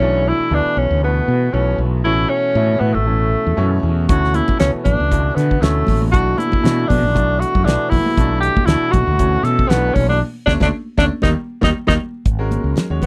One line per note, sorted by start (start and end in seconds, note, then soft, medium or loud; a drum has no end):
0.00 0.31 B1 medium
0.00 0.48 B2 medium
0.00 0.48 E3 medium
0.00 0.48 A3 medium
0.00 0.30 C#4 loud
0.00 0.48 D4 medium
0.28 0.56 E4 medium
0.40 muted fretless electric bass stroke soft
0.51 0.63 D2 medium
0.51 0.98 B2 medium
0.51 0.99 E3 medium
0.51 0.99 A3 medium
0.51 0.99 B3 medium
0.51 0.80 D4 medium
0.66 muted fretless electric bass stroke soft
0.77 0.88 B1 medium
0.77 1.03 C#4 medium
0.91 1.20 D2 medium
1.03 1.50 B2 medium
1.03 1.50 E3 medium
1.03 1.50 A3 medium
1.03 1.55 B3 medium
1.03 1.50 B3 medium
1.28 1.48 B2 medium
1.53 1.74 B1 medium
1.53 2.00 B2 medium
1.53 2.01 E3 medium
1.53 2.01 A3 medium
1.53 2.01 B3 medium
1.53 1.79 C#4 medium
1.78 2.04 B1 medium
2.04 2.25 A1 medium
2.04 2.52 B2 medium
2.04 2.52 E3 medium
2.04 2.52 A3 medium
2.04 2.52 C#4 medium
2.04 2.31 E4 medium
2.29 2.82 C#4 medium
2.55 2.76 A2 medium
2.55 3.03 B2 medium
2.55 3.03 E3 medium
2.55 3.03 A3 medium
2.55 3.03 E4 medium
2.80 2.96 A2 medium
2.80 2.95 B3 medium
2.94 3.35 A1 medium
2.94 3.83 A3 medium
3.07 3.53 B2 medium
3.07 3.54 E3 medium
3.07 3.54 A3 medium
3.07 3.54 C#4 medium
3.47 3.56 E2 medium
3.57 3.81 F#2 medium
3.57 4.04 B2 medium
3.57 4.04 E3 medium
3.57 4.04 A3 medium
3.57 4.05 C#4 medium
3.83 4.06 E2 medium
4.08 4.40 D2 medium
4.08 4.56 B2 medium
4.08 4.56 E3 medium
4.08 4.56 A3 medium
4.08 4.56 C#4 medium
4.08 4.36 F#4 medium
4.08 kick loud
4.08 closed hi-hat medium
4.24 snare soft
4.34 4.59 E4 medium
4.34 closed hi-hat medium
4.34 high conga medium
4.48 muted fretless electric bass stroke soft
4.48 kick medium
4.48 high conga medium
4.58 4.71 C#2 medium
4.58 5.06 B2 medium
4.58 5.06 E3 medium
4.58 5.06 A3 medium
4.58 5.06 B3 medium
4.58 4.71 C#4 medium
4.58 snare loud
4.58 closed hi-hat medium
4.75 muted fretless electric bass stroke soft
4.84 4.96 A1 medium
4.84 5.37 D4 medium
4.84 kick medium
4.84 closed hi-hat soft
4.84 high conga medium
4.84 low conga medium
5.00 5.29 C#2 medium
5.11 5.58 B2 medium
5.11 5.58 E3 medium
5.11 5.58 A3 medium
5.11 5.58 E4 medium
5.11 kick medium
5.11 closed hi-hat medium
5.35 5.57 D3 medium
5.35 5.63 B3 medium
5.35 snare soft
5.35 closed hi-hat medium
5.51 kick medium
5.61 5.82 D2 medium
5.61 6.09 B2 medium
5.61 6.09 E3 medium
5.61 6.01 A3 medium
5.61 6.09 A3 medium
5.61 6.09 C#4 medium
5.61 snare loud
5.61 closed hi-hat medium
5.87 6.14 A1 medium
5.87 kick medium
5.87 open hi-hat medium
5.87 high conga medium
5.87 low conga medium
6.02 high conga medium
6.12 6.33 B1 medium
6.12 6.59 B2 medium
6.12 6.59 E3 medium
6.12 6.60 A3 medium
6.12 6.59 D4 medium
6.12 6.39 F#4 medium
6.12 kick loud
6.12 closed hi-hat medium
6.38 6.89 E4 medium
6.38 closed hi-hat medium
6.38 high conga medium
6.52 kick medium
6.52 high conga medium
6.63 7.10 B2 medium
6.63 6.84 B2 medium
6.63 7.10 E3 medium
6.63 7.10 A3 medium
6.63 7.11 D4 medium
6.63 snare loud
6.63 closed hi-hat medium
6.88 7.04 B2 medium
6.88 7.41 D4 loud
6.88 kick medium
6.88 open hi-hat medium
6.88 high conga medium
6.88 low conga medium
7.03 7.43 B1 medium
7.15 7.62 B2 medium
7.15 7.62 E3 medium
7.15 7.62 A3 medium
7.15 7.62 D4 medium
7.15 kick medium
7.15 closed hi-hat medium
7.39 7.66 F#4 medium
7.39 closed hi-hat medium
7.55 7.64 F#2 medium
7.55 kick medium
7.65 7.76 B1 medium
7.65 8.12 B2 medium
7.65 8.12 E3 medium
7.65 8.13 A3 medium
7.65 8.13 B3 medium
7.65 7.91 D4 medium
7.65 snare loud
7.65 closed hi-hat medium
7.89 8.03 B1 medium
7.89 8.40 E4 loud
7.89 kick medium
7.89 open hi-hat medium
7.89 high conga medium
7.89 low conga medium
8.04 muted fretless electric bass stroke soft
8.04 high conga medium
8.17 8.48 B1 medium
8.17 8.64 B2 medium
8.17 8.64 E3 medium
8.17 8.64 A3 medium
8.17 8.64 D4 medium
8.17 kick loud
8.17 closed hi-hat medium
8.40 8.67 G4 loud
8.40 closed hi-hat medium
8.56 muted fretless electric bass stroke soft
8.56 kick medium
8.56 high conga medium
8.66 8.78 D2 medium
8.66 9.15 B2 medium
8.66 9.15 E3 medium
8.66 9.15 A3 medium
8.66 9.15 D4 medium
8.66 8.93 E4 loud
8.66 snare loud
8.66 closed hi-hat medium
8.81 muted fretless electric bass stroke soft
8.91 9.05 B1 medium
8.91 9.46 F#4 loud
8.91 kick medium
8.91 closed hi-hat medium
8.91 high conga medium
8.91 low conga medium
9.07 9.36 D2 medium
9.19 9.66 B2 medium
9.19 9.66 E3 medium
9.19 9.66 A3 medium
9.19 9.66 C#4 medium
9.19 kick medium
9.19 closed hi-hat medium
9.43 9.64 B2 medium
9.43 9.70 A4 medium
9.43 snare soft
9.43 closed hi-hat medium
9.59 kick medium
9.69 9.90 B1 medium
9.69 10.17 B2 medium
9.69 10.17 E3 medium
9.69 10.17 A3 medium
9.69 9.96 B3 medium
9.69 10.17 D4 medium
9.69 snare loud
9.69 closed hi-hat medium
9.94 10.21 B1 medium
9.94 10.08 C#4 medium
9.94 kick medium
9.94 open hi-hat medium
9.94 high conga medium
9.94 low conga medium
10.09 10.20 D4 medium
10.09 snare soft
10.09 high conga medium
10.46 10.57 D2 medium
10.46 10.56 A3 medium
10.46 10.55 C#4 medium
10.46 10.53 D4 medium
10.46 10.56 D4 medium
10.46 kick medium
10.46 snare medium
10.46 high conga medium
10.60 10.70 D2 medium
10.60 10.68 A3 medium
10.60 10.68 C#4 medium
10.60 10.68 D4 medium
10.60 kick medium
10.60 snare medium
10.60 high conga loud
10.97 11.08 D2 medium
10.97 11.07 A3 medium
10.97 11.07 C#4 medium
10.97 11.07 D4 medium
10.97 11.05 D4 medium
10.97 kick medium
10.97 snare medium
10.97 high conga medium
11.22 11.34 D#2 medium
11.22 11.32 D#3 medium
11.22 11.32 G3 medium
11.22 11.32 A#3 medium
11.22 11.30 D#4 medium
11.22 kick medium
11.22 snare medium
11.22 high conga loud
11.61 11.71 D#2 medium
11.61 11.69 D#3 medium
11.61 11.70 G3 medium
11.61 11.69 A#3 medium
11.61 11.70 D#4 medium
11.61 kick medium
11.61 snare medium
11.61 high conga medium
11.87 11.97 D#2 medium
11.87 11.95 D#3 medium
11.87 11.95 G3 medium
11.87 11.95 A#3 loud
11.87 11.94 D#4 medium
11.87 kick medium
11.87 snare medium
11.87 high conga loud
12.26 12.57 G#1 medium
12.26 kick loud
12.26 closed hi-hat medium
12.39 12.85 G#3 medium
12.39 12.85 C#4 medium
12.39 12.85 F#4 medium
12.39 12.85 A#4 medium
12.51 closed hi-hat medium
12.51 high conga medium
12.64 12.73 C#2 medium
12.76 snare loud
12.76 closed hi-hat medium
12.76 low conga medium
12.90 13.06 D#2 medium
12.90 13.06 G#3 medium
12.90 13.06 C#4 medium
12.90 13.06 F#4 medium
12.90 13.06 C#5 medium
13.02 13.06 B3 medium
13.02 kick medium
13.02 open hi-hat medium
13.02 high conga medium
13.02 low conga medium